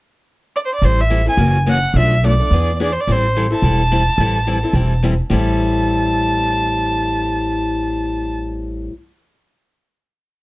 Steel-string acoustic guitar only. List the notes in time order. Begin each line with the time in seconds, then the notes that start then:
0.83 E3 G3 C4 E4 A4
1.10 E3 G3 C4 E4 A4
1.26 C4 E4 A4
1.38 C#3 E3 A#3 C#4 F#4
1.66 C#3 E3 A#3 C#4 F#4
1.96 B2 F3 A3 D4 A4
2.23 B2 F3 A3 D4 A4
2.40 A3 D4 A4
2.52 E3 B3 D4 G#4
2.80 E3 B3 D4 G#4
3.08 E3 G3 C4 E4 A4
3.36 E3 G3 C4 E4 A4
3.51 C4 E4 A4
3.63 E3 G3 C4 E4 A4
3.91 E3 G3 C4 E4 A4
4.20 E3 G3 C4 E4 A4
4.47 E3 G3 C4 E4 A4
4.63 C4 E4 A4
4.75 E3 G3 C4 E4 A4
5.03 E3 G3 C4 E4 A4
5.30 A2 E3 G3 C4 E4 A4